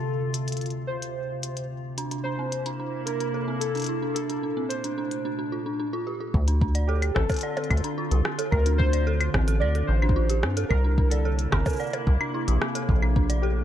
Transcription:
Already playing: ambient pad D2 C3 F4, synth keys A4
0.34 closed hi-hat
0.48 closed hi-hat
0.52 closed hi-hat
0.57 closed hi-hat
0.61 closed hi-hat
0.66 closed hi-hat
0.70 closed hi-hat
0.87 synth keys C5
1.02 closed hi-hat
1.43 closed hi-hat
1.57 closed hi-hat
1.98 ambient pad A#3 E4, synth bell D4, closed hi-hat
2.11 synth bell D4, closed hi-hat
2.24 synth bell D4, synth keys C5
2.39 synth bell C4
2.52 closed hi-hat
2.66 synth bell D4, closed hi-hat
2.80 synth bell D4
3.05 synth bell D4, synth keys A#4, closed hi-hat
3.20 synth bell D4, closed hi-hat
3.34 synth bell A4
3.48 synth bell C4
3.60 synth keys A4, closed hi-hat
3.75 synth bell D4, closed hi-hat
3.77 closed hi-hat
3.80 closed hi-hat
3.82 closed hi-hat
3.84 closed hi-hat
3.86 synth bell E4, closed hi-hat
4.02 synth bell D4
4.14 ambient pad A#2 A3 D4, synth bell D4, synth keys A4, closed hi-hat
4.30 synth bell D4, closed hi-hat
4.43 synth bell D4
4.57 synth bell C4
4.69 synth keys C5, closed hi-hat
4.84 synth bell D4, closed hi-hat
4.98 synth bell D4
5.11 closed hi-hat
5.25 synth bell D4
5.39 synth bell D4
5.52 synth bell F4
5.66 synth bell D4
5.80 synth bell D4
5.93 synth bell F4
6.07 synth bell G4
6.20 synth bell F4
6.34 acid bass D2, ambient pad D3 C4 F4, kick
6.48 synth bell D4, closed hi-hat
6.61 synth bell D4, kick
6.75 synth bell D5, closed hi-hat
6.87 synth keys G4, synth bell A4
7.02 closed hi-hat, claves
7.14 acid bass A1, synth bell C4, synth keys A4, kick, cross-stick, percussion blips
7.30 synth bell A4, kick, closed hi-hat, percussion blips, shaker
7.32 closed hi-hat
7.34 closed hi-hat
7.37 closed hi-hat
7.39 closed hi-hat
7.41 synth bell D5, closed hi-hat
7.57 synth bell A4, closed hi-hat, percussion blips
7.64 closed hi-hat
7.70 acid bass D2, kick, closed hi-hat, claves
7.77 closed hi-hat
7.84 synth bell D4, closed hi-hat
7.98 synth bell F4
8.11 acid bass C2, synth bell G4, closed hi-hat
8.25 synth bell C4, cross-stick
8.39 synth bell A4, closed hi-hat
8.51 acid bass D2, ambient pad D4, synth keys A#4, kick, claves
8.66 synth bell D4, closed hi-hat
8.78 synth bell D4, synth keys C5, kick
8.93 synth bell D5, closed hi-hat
9.07 synth bell A4
9.21 closed hi-hat, claves
9.34 acid bass A1, synth bell C4, kick, cross-stick, percussion blips
9.48 synth bell A4, closed hi-hat, shaker
9.60 acid bass D2, synth keys D5, synth bell D5
9.75 synth bell A4, closed hi-hat
9.87 acid bass A1, synth keys C5
10.02 synth bell D4, claves
10.09 kick
10.16 synth bell F4
10.30 synth bell G4, closed hi-hat
10.43 acid bass G2, synth bell C4, cross-stick, percussion blips
10.57 synth bell A4, closed hi-hat
10.69 acid bass C2, ambient pad C3 A#3 E4, synth keys A#4, kick, claves
10.84 synth bell D4
10.98 synth bell D4, kick
11.10 synth keys A4, synth bell D5, closed hi-hat
11.25 synth bell A4
11.39 closed hi-hat
11.51 acid bass G1, synth bell C4, synth keys A#4, kick, cross-stick, percussion blips, claves
11.66 synth bell A4, kick, percussion blips, shaker
11.69 shaker
11.73 shaker
11.76 shaker
11.80 synth bell D5, shaker
11.83 shaker
11.87 shaker
11.90 synth bell A4, closed hi-hat, percussion blips, shaker
12.07 acid bass C2, kick
12.21 synth bell D4, claves
12.34 synth bell E4
12.48 acid bass A#1, synth bell G4, closed hi-hat
12.61 synth bell C4, cross-stick
12.75 synth bell A4, closed hi-hat
12.89 acid bass A#1, ambient pad A3 D4, kick
13.02 synth bell D4, claves
13.16 synth bell D4, kick
13.30 synth bell D5, closed hi-hat
13.42 synth keys G4, synth bell A4

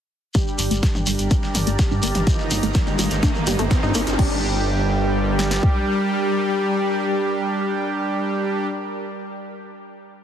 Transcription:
0.34 analog polysynth G3, analog synth pad G3 D4 G4, supersaw synth G4, ambient pad G4 A#4 D5 A#5, kick, closed hi-hat, mid tom, riser, shekere
0.47 shekere
0.59 detuned saw bass G1, synth arpeggio sound G3, closed hi-hat, open hi-hat, shekere
0.71 detuned saw bass G1, synth arpeggio sound A3, closed hi-hat, shekere
0.83 kick, snare, closed hi-hat, mid tom, shekere
0.95 detuned saw bass G1, synth arpeggio sound D4, mid tom, shekere
1.06 detuned saw bass G1, synth arpeggio sound G3, analog synth pad G3 D4 G4, closed hi-hat, open hi-hat, shekere
1.18 detuned saw bass G1, closed hi-hat, shekere
1.30 analog synth pad G3 D4 G4, synth arpeggio sound D4, kick, closed hi-hat, mid tom, shekere
1.43 snare, shekere
1.55 detuned saw bass G1, synth arpeggio sound G3, closed hi-hat, open hi-hat, mid tom, shekere
1.67 detuned saw bass G1, synth arpeggio sound A3, closed hi-hat, shekere
1.79 kick, snare, closed hi-hat, mid tom, shekere
1.91 detuned saw bass G2, synth arpeggio sound D4, shekere
2.03 detuned saw bass G1, synth arpeggio sound A#3, closed hi-hat, open hi-hat, shekere
2.15 detuned saw bass G1, snare, closed hi-hat, mid tom, shekere
2.27 analog synth pad D#3 A#3, synth arpeggio sound G3, ambient pad C5 D#5, kick, closed hi-hat, mid tom, shekere
2.39 snare, shekere
2.51 detuned saw bass G1, synth arpeggio sound G3, closed hi-hat, open hi-hat, mid tom, shekere
2.62 detuned saw bass G1, synth arpeggio sound A3, closed hi-hat, shekere
2.74 kick, snare, closed hi-hat, mid tom, shekere
2.87 detuned saw bass G1, synth arpeggio sound D#4, closed hi-hat, shekere
2.99 detuned saw bass G1, analog synth pad D#3 A#3 D#4, synth arpeggio sound G3, closed hi-hat, open hi-hat, mid tom, shekere
3.10 detuned saw bass G1, closed hi-hat, shekere
3.23 analog synth pad D#3 A#3 D#4, synth arpeggio sound D4, kick, snare, closed hi-hat, mid tom, shekere
3.35 mid tom, shekere
3.47 detuned saw bass G1, synth arpeggio sound G3, snare, closed hi-hat, open hi-hat, mid tom, shekere
3.59 detuned saw bass G1, synth arpeggio sound A3, closed hi-hat, mid tom, shekere
3.71 kick, snare, closed hi-hat, mid tom, shekere
3.77 mid tom
3.83 detuned saw bass G2, synth arpeggio sound D#4, mid tom, shekere
3.89 mid tom
3.94 detuned saw bass G1, synth arpeggio sound A#3, closed hi-hat, open hi-hat, mid tom, shekere
4.01 mid tom
4.07 detuned saw bass G1, closed hi-hat, mid tom, shekere
4.13 mid tom
4.19 detuned saw bass G1, ambient pad G3 G4 A#4 D5, analog polysynth G3, analog synth pad G3 D4 G4, synth arpeggio sound G3, supersaw synth G4, kick, crash
5.39 snare
5.51 snare
5.63 kick

